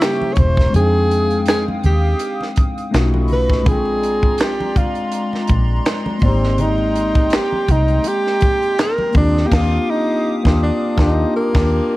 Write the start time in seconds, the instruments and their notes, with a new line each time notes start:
Already playing: analog synth pad C5 E5 A#5 C#6
0.00 tine electric piano G3 A#3 C#4 E4 G4, tenor saxophone G4, finger snap, snare, closed hi-hat, muted conga
0.21 high conga
0.33 tenor saxophone C#5, kick, closed hi-hat
0.37 fingered electric bass E1, tenor saxophone C5, low conga
0.57 kick, snare, closed hi-hat
0.70 tine electric piano G#3 C4, analog synth pad F5 D#6, muted conga, low conga
0.74 fingered electric bass F2, analog synth pad G#3 G5, tine electric piano D4 D#4, tenor saxophone G#4, closed hi-hat
0.79 tine electric piano G5
1.11 closed hi-hat
1.31 closed hi-hat
1.46 tenor saxophone G#4, finger snap, snare, closed hi-hat, muted conga
1.68 muted conga, high conga
1.84 fingered electric bass D#2, tenor saxophone G4, closed hi-hat, low conga
2.19 closed hi-hat
2.41 snare, muted conga
2.56 kick, closed hi-hat, high conga
2.78 closed hi-hat
2.91 fingered electric bass B1, tine electric piano A3 C#4 D#4 F4, analog synth pad A4 D#5 B5 C#6, finger snap, snare, closed hi-hat
2.96 tine electric piano F#4
3.14 high conga
3.28 open hi-hat, low conga
3.32 tenor saxophone B4
3.50 kick, snare
3.62 tine electric piano G#3 C4, analog synth pad D5 C6, kick, closed hi-hat, muted conga, low conga
3.66 fingered electric bass A#1, analog synth pad G#3 A#5, tine electric piano D4 F4, tenor saxophone G#4
3.72 tine electric piano G5
3.86 muted conga
4.03 closed hi-hat
4.23 kick
4.38 tenor saxophone G4, finger snap, snare, closed hi-hat, muted conga
4.60 muted conga, high conga
4.76 tenor saxophone F4, kick, closed hi-hat, low conga
4.95 closed hi-hat
5.12 closed hi-hat
5.33 snare, muted conga
5.47 fingered electric bass A#1, kick, closed hi-hat, high conga
5.86 finger snap, snare, closed hi-hat, muted conga
6.06 muted conga, high conga
6.18 fingered electric bass G#1, tine electric piano A#3 B3, kick, open hi-hat, low conga
6.23 tenor saxophone C4, tine electric piano D#4 D5, analog synth pad G5
6.27 tine electric piano C4 G4
6.44 snare
6.58 tenor saxophone D#4, closed hi-hat, low conga
6.78 muted conga
6.96 closed hi-hat
7.15 kick, closed hi-hat
7.30 finger snap, snare, closed hi-hat
7.35 tenor saxophone G4
7.52 high conga
7.68 fingered electric bass C2, tenor saxophone D#4, kick, closed hi-hat, low conga
7.88 closed hi-hat
8.04 tenor saxophone G4, closed hi-hat, muted conga
8.27 snare
8.41 kick, closed hi-hat, high conga
8.62 closed hi-hat
8.79 tenor saxophone A#4, finger snap, snare, closed hi-hat, muted conga
8.98 high conga
9.11 tine electric piano A#3 C4, kick, open hi-hat, low conga
9.15 fingered electric bass D#2, tine electric piano D4 F4, tenor saxophone D4, analog synth pad G4 F5 D6 D#6
9.21 tine electric piano G4
9.37 snare
9.46 tine electric piano A#3, tenor saxophone G4
9.52 fingered electric bass D#2, tine electric piano D4 F4, tenor saxophone F4, kick, snare, crash
9.57 tine electric piano G4
9.90 tenor saxophone D#4
10.43 fingered electric bass D#2, tine electric piano A#3 D4 F4, kick, snare
10.48 tine electric piano G4
10.63 tenor saxophone D4
10.97 fingered electric bass D#2, tine electric piano A#3 D4 F4, tenor saxophone D#4, kick, snare
11.01 tine electric piano G4
11.36 tenor saxophone A#3
11.53 fingered electric bass D#2, tine electric piano A#3 D4 F4, kick, snare, crash
11.58 tine electric piano G4